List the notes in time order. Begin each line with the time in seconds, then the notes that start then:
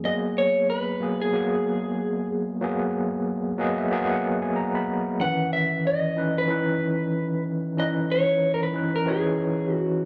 0.04 F#3 A#3 B3 G#4 D#5
0.38 C#5
0.70 B4
1.00 F#3 A#3 B3 G#4
1.21 G#4
1.33 F#3 A#3 B3 G#4
2.61 F#3 A#3 B3 G#4
3.58 F#3 A#3 B3 G#4 D#5
3.78 E5
3.91 F#3 A#3 B3 G#4 F#5
4.10 F#5
4.42 G#5
4.56 A#5
4.75 B5
5.20 D#3 E3 C#4 B4 F#5
5.53 E5
5.87 D#5
6.16 E3 C#4 D#4 B4
6.38 B4
6.48 E3 C#4 D#4 B4
7.77 E3 C#4 D#4 B4 D#5
8.12 C#5
8.54 A#4
8.63 B4
8.73 E3 C#4 D#4 B4
8.96 A#4
9.06 E3 C#4 D#4 G#4 C#5
9.74 F#4